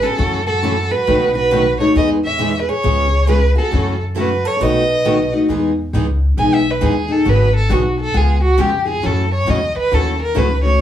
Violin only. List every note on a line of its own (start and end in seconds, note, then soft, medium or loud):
0.03 0.46 A4 medium
0.47 0.92 A4 medium
0.91 1.35 B4 medium
1.37 1.77 B4 medium
1.81 1.95 C#5 medium
1.97 2.10 D#5 medium
2.25 2.57 E5 medium
2.61 2.71 B4 medium
2.69 3.29 C#5 medium
3.30 3.55 B4 medium
3.58 3.98 A4 medium
4.20 4.49 B4 medium
4.47 4.58 C#5 medium
4.58 4.65 C#5 medium
4.63 5.34 D#5 medium
6.39 6.56 G#5 medium
6.54 6.72 E5 medium
6.71 6.87 B4 medium
6.86 7.13 G#4 medium
7.12 7.31 A4 medium
7.29 7.55 B4 medium
7.56 7.74 A4 medium
7.72 7.99 F#4 medium
8.00 8.18 A4 medium
8.17 8.43 G#4 medium
8.43 8.62 F#4 medium
8.61 8.88 G4 medium
8.88 9.07 G#4 medium
9.06 9.32 A4 medium
9.34 9.51 C#5 medium
9.50 9.76 D#5 medium
9.78 9.95 B4 loud
9.94 10.21 A4 medium
10.22 10.39 A#4 medium
10.38 10.64 B4 medium
10.64 10.81 C#5 medium